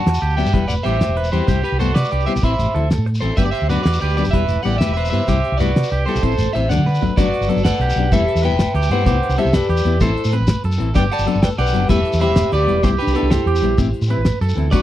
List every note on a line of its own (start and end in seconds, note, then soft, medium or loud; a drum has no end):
0.00 0.20 F#4 medium
0.00 0.35 F#5 medium
0.00 0.34 A5 medium
0.06 0.20 E2 medium
0.06 snare medium
0.06 closed hi-hat medium
0.14 shekere medium
0.22 0.42 D2 medium
0.22 0.52 G4 medium
0.22 closed hi-hat soft
0.30 shekere soft
0.36 0.46 F#3 medium
0.36 0.47 B3 medium
0.36 0.48 D4 medium
0.36 0.67 E5 medium
0.36 0.68 G5 medium
0.36 closed hi-hat soft
0.36 shekere soft
0.46 0.52 G2 medium
0.46 shekere medium
0.53 0.67 E1 medium
0.53 0.63 G3 medium
0.53 0.63 B3 medium
0.53 0.64 E4 medium
0.53 0.84 B4 medium
0.53 kick medium
0.53 closed hi-hat medium
0.68 0.76 E1 medium
0.68 0.73 D5 medium
0.68 0.73 F#5 medium
0.68 closed hi-hat soft
0.68 shekere medium
0.83 0.99 A1 medium
0.83 0.94 G3 soft
0.83 0.95 B3 soft
0.83 0.96 E4 medium
0.83 1.15 G4 medium
0.83 1.29 C5 medium
0.83 1.28 E5 medium
0.83 closed hi-hat soft
1.01 snare medium
1.01 closed hi-hat medium
1.01 shekere medium
1.09 1.29 E1 medium
1.17 1.47 B4 medium
1.17 closed hi-hat soft
1.24 shekere medium
1.32 1.40 E2 medium
1.32 1.42 G3 medium
1.32 1.43 B3 medium
1.32 1.43 E4 medium
1.32 1.62 G4 medium
1.32 1.62 C5 medium
1.32 closed hi-hat soft
1.32 shekere soft
1.47 1.62 C2 medium
1.47 1.57 G3 medium
1.47 1.58 E4 medium
1.47 1.78 G4 medium
1.47 muted nylon-string guitar stroke medium
1.47 kick medium
1.47 closed hi-hat medium
1.47 shekere medium
1.63 1.79 G4 medium
1.63 1.79 B4 medium
1.63 closed hi-hat soft
1.72 1.92 C2 medium
1.78 1.89 G3 medium
1.78 1.90 B3 medium
1.78 1.90 E4 medium
1.78 2.10 F#4 medium
1.78 1.95 A4 medium
1.78 1.94 C5 medium
1.78 closed hi-hat soft
1.78 shekere medium
1.94 2.03 C3 medium
1.94 2.25 B4 medium
1.94 2.26 D5 medium
1.94 snare medium
1.94 closed hi-hat medium
2.04 shekere medium
2.12 2.26 C2 medium
2.12 2.42 G4 medium
2.12 closed hi-hat soft
2.20 shekere soft
2.26 2.36 G3 medium
2.26 2.37 B3 medium
2.26 2.38 E4 medium
2.26 2.32 C5 medium
2.26 2.31 E5 medium
2.26 closed hi-hat soft
2.26 shekere soft
2.36 2.42 B1 medium
2.36 shekere medium
2.42 2.57 A1 medium
2.42 2.52 E3 medium
2.42 2.53 C4 medium
2.42 2.53 E4 medium
2.42 2.88 C5 medium
2.42 2.88 E5 medium
2.42 2.74 B5 medium
2.42 kick medium
2.42 closed hi-hat medium
2.59 2.66 A1 medium
2.59 closed hi-hat soft
2.59 shekere medium
2.73 2.95 D2 medium
2.73 2.84 E3 medium
2.73 2.85 C4 medium
2.73 2.85 E4 medium
2.73 3.05 A4 medium
2.73 closed hi-hat soft
2.91 snare medium
2.91 closed hi-hat medium
2.91 shekere medium
2.98 3.19 A2 medium
3.06 muted clean electric guitar stroke medium
3.06 closed hi-hat soft
3.15 shekere medium
3.20 3.29 A1 medium
3.20 3.31 E3 medium
3.20 3.32 C4 medium
3.20 3.32 E4 medium
3.20 3.37 A4 medium
3.20 3.36 C5 medium
3.20 closed hi-hat soft
3.20 shekere soft
3.37 3.52 G1 medium
3.37 3.47 F#3 medium
3.37 3.48 B3 medium
3.37 3.48 D4 medium
3.37 3.68 G4 medium
3.37 3.45 B4 medium
3.37 3.44 E5 medium
3.37 kick medium
3.37 closed hi-hat medium
3.37 shekere medium
3.45 3.51 D5 medium
3.51 3.69 C5 medium
3.51 3.68 E5 medium
3.51 closed hi-hat soft
3.62 3.75 D2 medium
3.68 3.79 F#3 medium
3.68 3.79 B3 medium
3.68 3.80 D4 medium
3.68 4.00 F#4 medium
3.68 3.85 B4 medium
3.68 3.82 D5 medium
3.68 closed hi-hat soft
3.68 shekere medium
3.83 3.99 E2 medium
3.83 4.00 B4 medium
3.83 3.99 D5 medium
3.83 snare medium
3.83 closed hi-hat medium
3.93 shekere medium
4.01 4.22 D2 medium
4.01 4.32 G4 medium
4.01 4.17 B4 medium
4.01 4.16 D5 medium
4.01 closed hi-hat soft
4.09 shekere soft
4.16 4.26 F#3 medium
4.16 4.27 B3 medium
4.16 4.28 D4 medium
4.16 4.24 B4 medium
4.16 4.22 D5 medium
4.16 closed hi-hat soft
4.16 shekere soft
4.24 4.32 F#1 medium
4.24 shekere medium
4.31 4.47 E1 medium
4.31 4.42 G3 medium
4.31 4.43 B3 medium
4.31 4.43 E4 medium
4.31 4.63 B4 medium
4.31 4.63 E5 medium
4.31 kick medium
4.31 closed hi-hat medium
4.48 4.56 E1 medium
4.48 closed hi-hat soft
4.48 shekere medium
4.63 4.79 A1 medium
4.63 4.74 G3 soft
4.63 4.74 B3 soft
4.63 4.75 E4 medium
4.63 4.95 G4 medium
4.63 4.80 D5 medium
4.63 4.78 F#5 loud
4.63 closed hi-hat soft
4.78 4.96 B4 medium
4.78 4.92 E5 medium
4.78 snare medium
4.78 closed hi-hat medium
4.78 shekere medium
4.89 5.09 E1 medium
4.94 5.27 B4 medium
4.94 5.11 C5 medium
4.94 5.09 E5 medium
4.94 closed hi-hat soft
5.05 shekere medium
5.10 5.19 G2 medium
5.10 5.21 G3 soft
5.10 5.22 B3 medium
5.10 5.22 E4 medium
5.10 5.57 C5 medium
5.10 5.60 E5 medium
5.10 closed hi-hat soft
5.10 shekere soft
5.27 5.42 C2 medium
5.27 5.37 G3 medium
5.27 5.38 E4 medium
5.27 5.58 G4 medium
5.27 muted nylon-string guitar stroke medium
5.27 kick medium
5.27 closed hi-hat medium
5.27 shekere medium
5.44 closed hi-hat soft
5.52 5.72 C2 medium
5.57 5.69 G3 medium
5.57 5.70 B3 medium
5.57 5.90 F#4 medium
5.57 6.04 B4 medium
5.57 6.06 D5 medium
5.57 closed hi-hat soft
5.57 shekere medium
5.62 5.70 E4 medium
5.76 5.82 C3 medium
5.76 snare medium
5.76 closed hi-hat medium
5.76 shekere soft
5.83 shekere medium
5.91 6.05 C2 medium
5.91 6.22 G4 medium
5.91 closed hi-hat soft
5.91 shekere soft
6.06 6.16 G3 medium
6.06 6.17 B3 medium
6.06 6.18 E4 medium
6.06 6.52 A4 medium
6.06 6.51 C5 medium
6.06 snare soft
6.06 closed hi-hat soft
6.15 6.22 B1 medium
6.15 shekere medium
6.22 6.36 A1 medium
6.22 6.32 E3 medium
6.22 6.33 C4 medium
6.22 6.33 E4 medium
6.22 6.53 C5 medium
6.22 kick medium
6.22 closed hi-hat medium
6.31 shekere soft
6.38 6.45 A1 medium
6.38 closed hi-hat soft
6.38 shekere medium
6.53 6.68 A1 medium
6.53 6.64 E3 soft
6.53 6.65 C4 medium
6.53 6.65 E4 medium
6.53 6.70 C5 medium
6.53 6.70 E5 medium
6.53 muted clean electric guitar stroke medium
6.53 closed hi-hat soft
6.53 shekere soft
6.69 6.77 D2 medium
6.69 6.81 F#3 soft
6.69 6.80 A3 medium
6.69 6.79 D4 medium
6.69 7.04 D5 medium
6.69 7.03 F#5 medium
6.69 snare soft
6.69 shekere medium
6.78 6.98 D3 medium
6.86 7.16 B4 medium
6.86 mid tom soft
6.86 shekere soft
6.95 shekere medium
7.01 7.09 G#1 medium
7.01 7.11 F#3 soft
7.01 7.12 A3 medium
7.01 7.12 D4 medium
7.01 floor tom medium
7.01 shekere soft
7.17 7.31 G1 medium
7.17 7.26 F#3 medium
7.17 7.27 B3 medium
7.17 7.28 D4 medium
7.17 7.48 F#4 medium
7.17 7.62 F#4 medium
7.17 7.62 B4 medium
7.17 7.61 D5 medium
7.17 kick medium
7.17 closed hi-hat medium
7.17 shekere medium
7.34 closed hi-hat soft
7.41 7.48 G1 medium
7.41 shekere medium
7.47 7.58 F#3 medium
7.47 7.59 B3 medium
7.47 7.59 D4 medium
7.47 7.79 A4 medium
7.47 closed hi-hat medium
7.47 shekere soft
7.56 7.70 G1 medium
7.56 shekere soft
7.65 8.09 B4 medium
7.65 8.09 D5 medium
7.65 8.13 F#5 medium
7.65 snare medium
7.65 closed hi-hat medium
7.65 shekere medium
7.74 shekere soft
7.79 7.93 B1 medium
7.79 8.11 G4 medium
7.79 closed hi-hat soft
7.90 shekere medium
7.96 8.10 B1 medium
7.96 8.05 F#3 medium
7.96 8.06 B3 medium
7.96 8.07 D4 medium
7.96 closed hi-hat soft
8.12 8.25 E1 loud
8.12 8.21 G3 medium
8.12 8.22 B3 medium
8.12 8.22 E4 medium
8.12 8.42 G4 medium
8.12 8.42 A4 medium
8.12 8.42 B4 medium
8.12 8.44 E5 loud
8.12 kick medium
8.12 closed hi-hat medium
8.12 shekere medium
8.28 closed hi-hat soft
8.35 8.49 E2 medium
8.35 shekere medium
8.43 8.53 G3 medium
8.43 8.53 B3 medium
8.43 8.54 E4 medium
8.43 8.73 B4 medium
8.43 8.88 B4 medium
8.43 8.88 E5 medium
8.43 8.91 G5 loud
8.43 closed hi-hat soft
8.51 8.65 E1 medium
8.59 snare medium
8.59 closed hi-hat medium
8.59 shekere medium
8.74 8.88 D2 medium
8.74 9.05 G4 medium
8.74 closed hi-hat medium
8.82 shekere medium
8.90 9.08 G2 medium
8.90 9.00 G3 soft
8.90 9.01 B3 medium
8.90 9.01 E4 medium
8.90 9.36 B4 medium
8.90 9.35 C5 medium
8.90 9.40 F#5 medium
8.90 closed hi-hat soft
9.05 9.20 C2 loud
9.05 9.16 B3 medium
9.05 9.16 E4 medium
9.05 9.36 G4 medium
9.05 muted nylon-string guitar stroke medium
9.05 kick medium
9.05 closed hi-hat medium
9.05 shekere medium
9.23 closed hi-hat soft
9.29 9.36 C2 medium
9.29 shekere medium
9.36 9.47 G3 medium
9.36 9.48 B3 medium
9.36 9.48 E4 medium
9.36 9.68 A4 medium
9.36 9.53 C5 medium
9.36 9.55 E5 medium
9.36 closed hi-hat medium
9.36 shekere soft
9.40 9.54 G4 medium
9.45 9.59 C2 medium
9.45 shekere soft
9.53 10.02 G4 medium
9.53 9.98 B4 medium
9.53 10.01 D5 medium
9.53 snare medium
9.53 closed hi-hat medium
9.53 shekere medium
9.62 shekere soft
9.69 9.83 E2 medium
9.69 9.99 G4 medium
9.69 closed hi-hat soft
9.77 shekere medium
9.84 9.98 E2 medium
9.84 9.94 B3 medium
9.84 9.95 E4 medium
9.84 muted nylon-string guitar stroke medium
9.84 closed hi-hat soft
9.84 shekere soft
10.00 10.14 A1 medium
10.00 10.10 E3 medium
10.00 10.11 C4 medium
10.00 10.11 E4 medium
10.00 10.34 A4 medium
10.00 10.31 A4 medium
10.00 10.34 C5 medium
10.00 kick medium
10.00 closed hi-hat medium
10.00 shekere medium
10.05 10.36 E4 medium
10.17 closed hi-hat soft
10.24 10.38 A2 medium
10.24 shekere medium
10.32 10.41 E3 medium
10.32 10.42 C4 medium
10.32 10.63 B4 medium
10.32 muted nylon-string guitar stroke medium
10.32 closed hi-hat medium
10.40 10.54 A1 medium
10.47 snare medium
10.47 closed hi-hat medium
10.47 shekere medium
10.64 10.77 F#2 medium
10.64 10.94 A4 medium
10.64 closed hi-hat medium
10.72 shekere medium
10.78 10.97 A1 medium
10.78 10.88 E3 medium
10.78 10.89 C4 medium
10.78 10.90 E4 medium
10.78 closed hi-hat soft
10.94 11.09 G1 loud
10.94 11.04 F#3 medium
10.94 11.05 B3 medium
10.94 11.05 D4 medium
10.94 11.25 G4 medium
10.94 11.00 D5 medium
10.94 11.02 G5 loud
10.94 kick medium
10.94 closed hi-hat medium
10.94 shekere medium
10.99 11.05 B4 medium
11.12 11.41 D5 medium
11.12 11.41 F#5 medium
11.12 11.41 A5 loud
11.12 closed hi-hat soft
11.19 11.26 G1 medium
11.19 shekere medium
11.25 11.35 F#3 medium
11.25 11.36 B3 medium
11.25 11.37 D4 medium
11.25 11.57 A4 medium
11.25 closed hi-hat medium
11.25 shekere soft
11.35 11.48 G1 medium
11.35 shekere soft
11.42 11.51 B4 medium
11.42 11.48 D5 medium
11.42 11.48 G5 medium
11.42 snare medium
11.42 closed hi-hat medium
11.42 shekere medium
11.51 shekere soft
11.58 11.72 B1 medium
11.58 11.88 G4 medium
11.58 11.91 B4 medium
11.58 11.88 D5 medium
11.58 11.89 F#5 medium
11.58 closed hi-hat soft
11.67 shekere medium
11.72 11.88 F#1 medium
11.72 11.83 F#3 medium
11.72 11.83 B3 medium
11.72 11.84 D4 medium
11.72 closed hi-hat soft
11.72 shekere soft
11.87 12.03 E1 loud
11.87 11.98 G3 medium
11.87 11.98 B3 medium
11.87 11.99 E4 medium
11.87 12.19 G4 medium
11.87 12.20 A4 medium
11.87 12.19 B4 medium
11.87 12.20 E5 medium
11.87 kick medium
11.87 closed hi-hat medium
11.87 shekere medium
12.05 closed hi-hat medium
12.13 12.27 E2 medium
12.13 shekere medium
12.19 12.29 G3 medium
12.19 12.30 B3 medium
12.19 12.31 E4 medium
12.19 12.50 C5 medium
12.19 12.53 E5 medium
12.19 12.51 B5 medium
12.19 closed hi-hat medium
12.23 12.51 G4 medium
12.29 12.43 E1 medium
12.36 snare medium
12.36 closed hi-hat medium
12.36 shekere loud
12.52 12.66 D2 medium
12.52 12.82 G4 medium
12.52 12.83 G4 medium
12.52 12.82 B4 medium
12.52 12.82 D5 medium
12.52 closed hi-hat medium
12.66 12.84 E1 medium
12.66 12.76 G3 medium
12.66 12.77 B3 medium
12.66 12.78 E4 medium
12.66 closed hi-hat soft
12.82 12.97 C2 medium
12.82 12.92 G3 medium
12.82 12.93 B3 medium
12.82 12.93 E4 medium
12.82 12.89 G4 medium
12.82 13.14 G4 medium
12.82 12.88 C5 medium
12.82 kick loud
12.82 closed hi-hat medium
12.82 shekere medium
12.87 12.93 E4 medium
12.98 13.16 D4 medium
12.98 13.14 G4 medium
12.98 13.13 B4 medium
12.98 closed hi-hat medium
13.07 13.14 C2 medium
13.07 shekere medium
13.14 13.24 B3 medium
13.14 13.25 E4 medium
13.14 13.29 G4 medium
13.14 13.46 A4 medium
13.14 13.30 B4 medium
13.14 closed hi-hat medium
13.18 13.32 D4 medium
13.23 13.36 C2 medium
13.30 14.21 G4 medium
13.30 14.25 C5 medium
13.30 snare medium
13.30 closed hi-hat medium
13.30 shekere medium
13.35 14.27 E4 medium
13.46 13.60 E2 medium
13.46 13.77 G4 medium
13.46 closed hi-hat soft
13.56 shekere medium
13.61 13.76 A#1 medium
13.61 13.71 G3 medium
13.61 13.72 B3 medium
13.61 13.73 E4 medium
13.61 closed hi-hat soft
13.77 13.92 A1 loud
13.77 13.87 E3 medium
13.77 13.88 C4 medium
13.77 13.88 E4 medium
13.77 muted clean electric guitar stroke medium
13.77 kick medium
13.77 closed hi-hat medium
13.77 shekere medium
13.94 closed hi-hat soft
14.02 14.15 A2 medium
14.02 shekere medium
14.08 14.18 E3 medium
14.08 14.19 C4 medium
14.08 14.20 E4 medium
14.08 14.40 B4 medium
14.08 closed hi-hat soft
14.17 14.31 A1 medium
14.25 snare medium
14.25 closed hi-hat medium
14.25 shekere loud
14.41 14.54 F#2 medium
14.41 14.71 A4 medium
14.41 closed hi-hat soft
14.41 shekere soft
14.49 shekere medium
14.55 14.74 D2 medium
14.55 14.65 E3 medium
14.55 14.67 C4 medium
14.55 14.67 E4 medium
14.55 closed hi-hat soft
14.71 14.82 G1 loud
14.71 14.81 F#3 medium
14.71 14.82 B3 medium
14.71 14.82 D4 medium
14.71 14.82 F#4 medium
14.71 14.82 B4 medium
14.71 14.82 D5 medium
14.71 kick medium
14.71 closed hi-hat medium
14.71 shekere medium